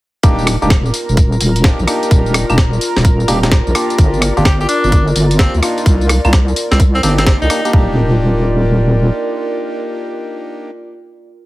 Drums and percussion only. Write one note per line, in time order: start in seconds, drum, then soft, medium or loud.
0.23 kick loud
0.23 closed hi-hat medium
0.23 tambourine soft
0.39 tambourine soft
0.47 cross-stick medium
0.47 open hi-hat loud
0.47 tambourine medium
0.62 tambourine soft
0.70 kick loud
0.70 cross-stick medium
0.70 snare loud
0.70 closed hi-hat medium
0.70 tambourine soft
0.86 tambourine soft
0.94 open hi-hat loud
0.94 tambourine medium
1.09 tambourine soft
1.17 kick loud
1.17 closed hi-hat medium
1.17 tambourine soft
1.32 tambourine soft
1.41 open hi-hat loud
1.41 tambourine medium
1.56 closed hi-hat medium
1.56 tambourine soft
1.64 kick loud
1.64 snare loud
1.64 closed hi-hat medium
1.64 tambourine soft
1.79 tambourine soft
1.88 cross-stick medium
1.88 open hi-hat loud
1.88 tambourine medium
2.03 closed hi-hat soft
2.03 tambourine soft
2.11 kick loud
2.11 closed hi-hat medium
2.11 tambourine soft
2.26 tambourine soft
2.34 cross-stick medium
2.34 open hi-hat loud
2.34 tambourine medium
2.50 tambourine soft
2.50 claves medium
2.58 kick loud
2.58 cross-stick medium
2.58 snare loud
2.58 closed hi-hat medium
2.58 tambourine soft
2.73 tambourine soft
2.81 open hi-hat loud
2.81 tambourine medium
2.96 snare medium
2.96 tambourine soft
3.05 kick loud
3.05 closed hi-hat medium
3.05 tambourine soft
3.20 tambourine soft
3.28 open hi-hat loud
3.28 tambourine medium
3.43 snare medium
3.43 closed hi-hat medium
3.43 tambourine soft
3.52 kick loud
3.52 snare loud
3.52 closed hi-hat medium
3.52 tambourine soft
3.67 tambourine soft
3.75 cross-stick medium
3.75 open hi-hat loud
3.75 tambourine medium
3.90 closed hi-hat soft
3.90 tambourine soft
3.98 kick loud
3.98 closed hi-hat medium
3.98 tambourine soft
4.14 tambourine soft
4.22 cross-stick medium
4.22 open hi-hat loud
4.22 tambourine medium
4.37 tambourine soft
4.45 kick loud
4.45 cross-stick medium
4.45 snare loud
4.45 closed hi-hat medium
4.45 tambourine soft
4.61 tambourine soft
4.69 open hi-hat loud
4.69 tambourine medium
4.84 tambourine soft
4.92 kick loud
4.92 closed hi-hat medium
4.92 tambourine soft
5.07 tambourine soft
5.16 open hi-hat loud
5.16 tambourine medium
5.31 closed hi-hat medium
5.31 tambourine soft
5.39 kick loud
5.39 snare loud
5.39 closed hi-hat medium
5.39 tambourine soft
5.54 tambourine soft
5.63 cross-stick medium
5.63 open hi-hat loud
5.63 tambourine medium
5.78 closed hi-hat soft
5.78 tambourine soft
5.86 kick loud
5.86 closed hi-hat medium
5.86 tambourine soft
6.01 tambourine soft
6.09 cross-stick medium
6.09 open hi-hat loud
6.09 tambourine medium
6.25 tambourine soft
6.25 claves medium
6.33 kick loud
6.33 cross-stick medium
6.33 snare loud
6.33 closed hi-hat medium
6.33 tambourine soft
6.48 tambourine soft
6.56 open hi-hat loud
6.56 tambourine medium
6.72 snare medium
6.72 closed hi-hat soft
6.72 tambourine soft
6.80 kick loud
6.80 closed hi-hat medium
6.80 tambourine soft
6.95 tambourine soft
7.03 open hi-hat loud
7.03 tambourine medium
7.18 snare medium
7.18 closed hi-hat medium
7.18 tambourine soft
7.27 kick loud
7.27 snare loud
7.27 closed hi-hat medium
7.27 tambourine soft
7.42 tambourine soft
7.50 cross-stick medium
7.50 open hi-hat loud
7.50 tambourine medium
7.65 closed hi-hat soft
7.65 tambourine soft
7.73 kick loud